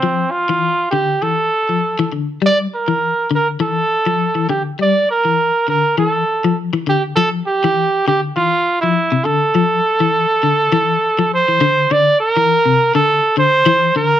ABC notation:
X:1
M:4/4
L:1/16
Q:"Swing 16ths" 1/4=101
K:F
V:1 name="Trumpet"
C2 F4 G2 A6 z2 | d2 B4 B2 A6 G2 | d2 B4 B2 A4 z2 G2 | A2 G4 G2 F3 E3 A2- |
A12 c4 | d2 B4- B A3 c4 B2 |]
V:2 name="Clean electric guitar" clef=bass
F,2 z E,2 z D,2 E,2 z F,2 E, D,2 | G,2 z E,2 z D,2 E,2 z F,2 E, D,2 | G,2 z E,2 z D,2 E,2 z F,2 E, D,2 | F,2 z E,2 z D,2 E,2 z F,2 C, D,2 |
F,2 z E,2 z D,2 E,2 z F,2 E, D,2 | D,2 z E,2 C,2 D,2 z D,2 E,2 D,2 |]